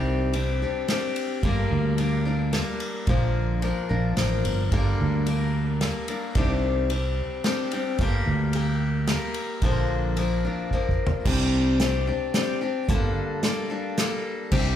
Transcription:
Already playing: fingered electric bass C2, steel-string acoustic guitar C3 D#3 G3 C4 D4 G4
0.33 steel-string acoustic guitar G3 C4 D4 G4, ride
0.62 steel-string acoustic guitar G3 C4 D4 G4
0.88 steel-string acoustic guitar G3 C4 D4 G4, snare, ride
1.16 ride
1.43 fingered electric bass G1, steel-string acoustic guitar G2 D3 G3 A#3 D4 A#4, kick, ride
1.71 fingered electric bass D2
1.98 steel-string acoustic guitar G3 A#3 D4 A#4, ride
2.25 steel-string acoustic guitar G3 A#3 D4 A#4
2.53 steel-string acoustic guitar G3 A#3 D4 A#4, snare, ride
2.80 ride
3.07 fingered electric bass A#1, steel-string acoustic guitar A#2 D3 F3 A#3 D4 A#4, kick, ride
3.62 steel-string acoustic guitar F3 A#3 D4 A#4, ride
3.89 fingered electric bass A#1, steel-string acoustic guitar F3 A#3 D4 A#4
4.17 fingered electric bass A1, steel-string acoustic guitar F3 A#3 D4 A#4, snare, ride
4.45 fingered electric bass G1, ride
4.72 fingered electric bass G1, steel-string acoustic guitar G2 D3 G3 A#3 D4 A#4, kick, ride
5.01 fingered electric bass D2
5.26 steel-string acoustic guitar G3 A#3 D4 A#4, ride
5.81 steel-string acoustic guitar G3 A#3 D4 A#4, snare, ride
6.08 steel-string acoustic guitar G3 A#3 D4 A#4, ride
6.35 fingered electric bass C2, steel-string acoustic guitar C3 D#3 G3 C4 D4 G4, kick, ride
6.90 steel-string acoustic guitar G3 C4 D4 G4, ride
7.44 steel-string acoustic guitar G3 C4 D4 G4, snare, ride
7.71 steel-string acoustic guitar G3 C4 D4 G4, ride
7.98 fingered electric bass G1, steel-string acoustic guitar G2 D3 G3 A#3 G4 A#4, kick, ride
8.26 fingered electric bass D2
8.53 steel-string acoustic guitar G3 A#3 G4 A#4, ride
9.07 steel-string acoustic guitar G3 A#3 G4 A#4, snare, ride
9.34 ride
9.62 fingered electric bass A#1, steel-string acoustic guitar A#2 D3 F3 A#3 D4 A#4, kick, ride
10.17 steel-string acoustic guitar F3 A#3 D4 A#4, ride
10.44 steel-string acoustic guitar F3 A#3 D4 A#4
10.71 steel-string acoustic guitar F3 A#3 D4 A#4, kick
10.89 kick
11.07 floor tom
11.25 fingered electric bass C2, steel-string acoustic guitar C3 G3 C4 D4 G4, kick, crash
11.80 steel-string acoustic guitar G3 C4 D4 G4, snare, closed hi-hat
12.07 steel-string acoustic guitar C4 D4 G4
12.34 steel-string acoustic guitar G3 C4 D4 G4, snare, closed hi-hat
12.61 steel-string acoustic guitar C4 D4 G4
12.89 fingered electric bass G1, steel-string acoustic guitar G2 D3 G3 A#3 D4 A4, kick, closed hi-hat
13.43 steel-string acoustic guitar G3 A#3 D4 A4, snare, closed hi-hat
13.70 steel-string acoustic guitar G3 A#3 D4 A4
13.98 steel-string acoustic guitar G3 A#3 D4 A4, snare, closed hi-hat
14.52 fingered electric bass C2, steel-string acoustic guitar C3 G3 C4 D4 G4, kick, crash

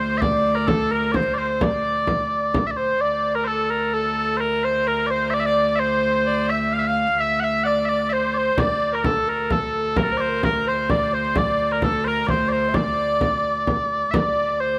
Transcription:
Already playing: viola da gamba D2, soft synth lead C5
0.00 bagpipes C5, shawm C5
0.18 soft synth lead D5, bagpipes D5 E5
0.22 shawm D5, frame drum
0.45 frame drum
0.55 bagpipes A#4, soft synth lead A#4
0.67 bagpipes A4, soft synth lead A4, shawm A4, frame drum
0.91 soft synth lead A#4, bagpipes A#4, shawm A#4, frame drum
1.12 soft synth lead C5, bagpipes C5 D5, frame drum
1.16 shawm C5
1.34 shawm C5, bagpipes D5, frame drum
1.38 bagpipes C5, soft synth lead C5
1.61 soft synth lead D5, bagpipes D5, shawm D5, frame drum
2.07 frame drum
2.54 frame drum
2.67 bagpipes E5
2.71 bagpipes D5
2.77 bagpipes C5, soft synth lead C5, shawm C5
3.01 viola da gamba D2, soft synth lead D5, bagpipes D5, shawm D5
3.35 bagpipes A#4, shawm A#4, soft synth lead A#4
3.44 shawm A4, bagpipes A4 C5, soft synth lead A4
3.70 bagpipes A#4, soft synth lead A#4
3.93 soft synth lead A4, shawm A4, bagpipes A4
4.17 shawm A4
4.37 bagpipes A#4 C5, soft synth lead A#4, shawm A#4
4.63 shawm C5, soft synth lead C5, bagpipes C5
4.87 shawm A#4, soft synth lead A#4, bagpipes A#4
5.06 shawm C5, soft synth lead C5, bagpipes D5
5.11 bagpipes C5
5.30 shawm D5, soft synth lead D5, bagpipes D5 E5
5.40 bagpipes E5
5.46 shawm D5, bagpipes D5, soft synth lead D5
5.76 shawm C5, soft synth lead C5, bagpipes C5 E5
6.26 shawm D5, soft synth lead D5
6.48 shawm E5, bagpipes E5, soft synth lead E5
6.71 shawm F5, soft synth lead F5, bagpipes F5
6.79 bagpipes E5
6.86 soft synth lead F5, shawm F5, bagpipes F5
7.18 shawm E5, soft synth lead E5, bagpipes E5
7.40 shawm E5, soft synth lead E5, bagpipes F#5
7.44 bagpipes E5
7.63 shawm D5, soft synth lead D5, bagpipes D5 F#5
7.85 shawm D5, bagpipes E5
7.89 bagpipes D5, soft synth lead D5
8.10 shawm C5, soft synth lead C5, bagpipes C5 E5
8.34 soft synth lead C5, bagpipes C5 D5
8.57 viola da gamba D2, soft synth lead D5, shawm D5, bagpipes D5, frame drum
8.81 frame drum
8.92 shawm A#4, soft synth lead A#4, bagpipes A#4
9.04 soft synth lead A4, shawm A4, bagpipes A4, frame drum
9.27 soft synth lead A#4, bagpipes A#4, frame drum
9.50 soft synth lead A4, shawm A4, bagpipes A4, frame drum
9.73 soft synth lead A4, frame drum
9.96 shawm A#4, soft synth lead A#4, bagpipes A#4, frame drum
10.04 shawm A4
10.11 shawm A#4, soft synth lead C5
10.17 bagpipes C5 D5, frame drum
10.29 soft synth lead A#4
10.43 soft synth lead A#4, shawm A#4, bagpipes A#4, frame drum
10.67 soft synth lead C5, shawm C5, bagpipes C5, frame drum
10.73 soft synth lead C5
10.78 soft synth lead C5
10.90 soft synth lead D5, shawm D5, bagpipes D5, frame drum
11.13 soft synth lead C5, shawm C5, bagpipes C5, frame drum
11.36 soft synth lead D5, shawm D5, bagpipes D5, frame drum
11.59 frame drum
11.72 shawm A#4, bagpipes A#4
11.82 soft synth lead A4, shawm A4, bagpipes A4, frame drum
12.04 shawm A#4, soft synth lead A#4, bagpipes A#4 C5, frame drum
12.27 shawm C5, soft synth lead C5, bagpipes C5 D5, frame drum
12.49 shawm C5, soft synth lead C5, bagpipes C5 D5, frame drum
12.68 soft synth lead E5
12.74 shawm D5, bagpipes D5, soft synth lead D5, frame drum
12.97 frame drum
13.21 frame drum
13.45 frame drum
13.67 frame drum
14.11 viola da gamba D2, soft synth lead D5, shawm D5, bagpipes D5 E5, frame drum
14.60 soft synth lead C5, shawm C5, bagpipes C5

